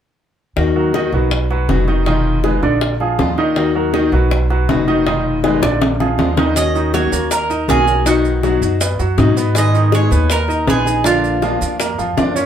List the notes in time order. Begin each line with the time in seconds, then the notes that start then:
0.56 D#2 D#3 A#3 D#4 F#4, high bongo
0.76 F#3 F#4 A#4
0.93 D#3 A#3 D#4 F#4 D#5, high bongo
1.12 B1 F#3 A#3 D#4 F#4 B4, high bongo
1.31 muted nylon-string guitar stroke, high bongo
1.50 F#3 F#4 B4, high bongo
1.69 F1 B2 F#3 B3 D#4 F#4, high bongo, low bongo
1.87 D#3 B3 D#4 F#4 D#5, high bongo
2.06 B2 D#3 G#3 D#4 F4 D#5, high bongo
2.44 B2 D#3 G#3 D#4 F4 G#4 B4, high bongo
2.62 A#1 D3 G#3 D4 D#4 F4 D5, high bongo
2.81 muted nylon-string guitar stroke, high bongo
3.00 F3 F4 G#4, high bongo
3.19 D#2 F3 G#3 D4 F4, high bongo, low bongo
3.38 D#3 G#3 D4 D#4 F4 D#5, high bongo
3.56 D#3 A#3 D#4 F#4, high bongo
3.75 F#3 F#4 A#4
3.93 D#3 A#3 D#4 F#4 D#5, high bongo
4.12 B1 F#3 A#3 D#4 F#4 B4, high bongo
4.31 muted nylon-string guitar stroke, high bongo
4.50 F#3 F#4 B4, high bongo
4.69 F1 B2 F#3 B3 D#4 F#4, high bongo, low bongo
4.87 D#3 B3 D#4 F#4 D#5, high bongo
5.06 B2 D#3 G#3 D#4 F4 D#5, high bongo
5.43 B2 D#3 G#3 D#4 F4 G#4 B4, high bongo
5.62 A#1 D3 G#3 D4 D#4 F4 D5, high bongo
5.81 muted nylon-string guitar stroke, low bongo
6.00 F3 F4 G#4, low bongo
6.18 D#2 F3 G#3 D4 F4, low bongo
6.37 D#3 G#3 D4 D#4 F4 D#5, low bongo
6.56 D#3 A#3 C#4 F#4 D#5, high bongo, maracas
6.75 D#3 D#4, maracas
6.94 D#3 F#3 A#3 C#4 F#4 C#5, high bongo, maracas
7.12 D#2 A#3 C#4 F#4 A#4, high bongo, maracas
7.31 A#4, muted nylon-string guitar stroke, high bongo, maracas
7.50 D#4 D#5, high bongo, maracas
7.68 B1 D#3 A#3 C#4 F#4 G#4 A#4, high bongo, low bongo, maracas
7.87 A#3 C#4 F#4, high bongo, maracas
8.05 B2 D#3 F#3 B3 D#4 F#4, high bongo, maracas
8.25 maracas
8.43 B2 F#3 B3 D#4 F#4, high bongo, maracas
8.61 F#2 B3 D#4 F#4, high bongo, maracas
8.81 B3 B4, muted nylon-string guitar stroke, high bongo, maracas
8.99 F#2 F#3 F#4, high bongo, maracas
9.18 G#2 B2 F#3 B3 D#4 F#4 D#5, high bongo, low bongo, maracas
9.36 B3 D#4 F#4 B4, high bongo, maracas
9.55 D#3 G#3 B3 D#4 G#4 D#5, high bongo, maracas
9.74 D#3 D#4, maracas
9.92 D#3 G#3 B3 D#4 G#4 C#5, high bongo, maracas
10.11 D#2 B3 D#4 G#4 B4, high bongo, maracas
10.30 A#4, muted nylon-string guitar stroke, high bongo, maracas
10.48 D#4 D#5, high bongo, maracas
10.67 A#1 D#3 G#3 B3 D#4 G#4 B4, high bongo, low bongo, maracas
10.86 B3 D#4 G#4, high bongo, maracas
11.04 D3 F3 A#3 D4 F4, high bongo, maracas
11.24 maracas
11.42 F3 A#3 D4 F4, high bongo, maracas
11.61 F2 A#3 D4 F4, high bongo, maracas
11.80 A#3 A#4, muted nylon-string guitar stroke, high bongo, maracas
11.98 F2 F3 F4, high bongo, maracas
12.17 F#2 F3 A#3 D4 F4 D5, high bongo, low bongo, maracas
12.36 A#3 C#4 D4 F4 C#5, high bongo, maracas